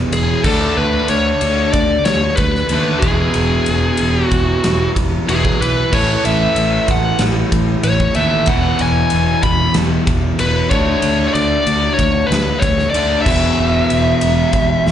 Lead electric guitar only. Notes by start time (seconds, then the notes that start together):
0.13 G#4
0.45 A4
0.77 B4
1.10 C#5
1.73 D5
2.05 C#5
2.36 B4
3.00 G#4
4.24 F#4
5.29 G#4
5.62 B4
5.94 C#5
6.26 E5
6.91 F#5
7.84 C#5
8.16 E5
8.48 F#5
8.82 G#5
9.43 B5
10.40 B4
10.70 C#5
11.28 C#5
11.33 D5
11.93 C#5
12.26 B4
12.59 C#5
12.90 D5
13.22 E5